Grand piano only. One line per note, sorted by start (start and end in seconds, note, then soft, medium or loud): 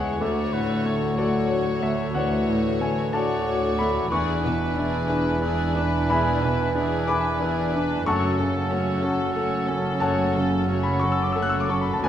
0.00 0.17 E2 soft
0.00 0.24 E3 soft
0.00 0.24 G#3 soft
0.00 0.24 E4 soft
0.00 0.24 C#5 soft
0.00 0.22 E5 soft
0.00 0.19 F#5 medium
0.00 0.24 G#5 soft
0.00 0.24 A5 medium
0.00 0.23 C#6 medium
0.21 2.11 D2 soft
0.21 1.15 E5 medium
0.54 1.05 A2 soft
0.85 1.37 A3 soft
1.18 1.69 F#4 soft
1.18 1.79 A4 soft
1.18 1.78 D5 medium
1.50 2.02 C#5 soft
1.82 2.35 A3 soft
1.82 2.13 E5 medium
2.15 4.07 D2 soft
2.15 2.77 C#5 soft
2.15 2.77 D5 soft
2.15 2.76 F#5 medium
2.49 3.01 A2 soft
2.81 3.32 A3 soft
2.81 3.11 G#5 medium
3.13 3.65 F#4 soft
3.13 3.75 D5 soft
3.13 3.75 F#5 soft
3.13 3.74 A5 medium
3.46 3.98 C#5 soft
3.79 4.12 A3 soft
3.79 4.09 B5 medium
4.12 6.06 E2 medium
4.12 6.06 C#6 medium
4.45 4.97 B2 soft
4.78 5.30 D4 soft
5.10 5.63 G#4 soft
5.42 5.96 B4 soft
5.76 6.29 D4 soft
6.10 8.03 E2 medium
6.10 7.05 E5 medium
6.10 7.05 G#5 medium
6.10 7.05 B5 medium
6.44 6.96 B2 soft
6.75 7.28 D4 soft
7.07 7.61 G#4 soft
7.07 8.03 G#5 medium
7.07 8.02 B5 medium
7.07 8.02 D6 medium
7.42 7.94 B4 soft
7.76 8.08 D4 medium
8.06 9.98 F#2 medium
8.06 9.98 F#5 medium
8.06 9.98 A5 medium
8.06 9.97 C#6 medium
8.40 8.91 C#3 soft
8.72 9.23 C#4 soft
9.04 9.55 F#4 soft
9.36 9.88 A4 medium
9.69 10.22 C#4 soft
10.00 11.99 F#2 medium
10.00 10.79 C#5 medium
10.00 10.79 F#5 medium
10.00 10.78 A5 medium
10.35 10.89 C#3 soft
10.68 11.22 C#4 soft
10.83 10.98 B5 medium
10.99 11.56 F#4 medium
10.99 11.12 C#6 medium
11.12 11.23 E6 soft
11.22 11.32 D6 medium
11.32 11.90 A4 soft
11.32 11.41 E6 medium
11.42 11.50 F#6 medium
11.49 11.58 E6 medium
11.60 11.69 D6 medium
11.70 12.04 C#4 soft
11.70 11.79 C#6 medium
11.81 11.91 B5 medium
11.93 12.04 A5 medium
12.03 12.09 D2 medium
12.03 12.09 B4 medium
12.03 12.09 D5 medium
12.03 12.09 G#5 medium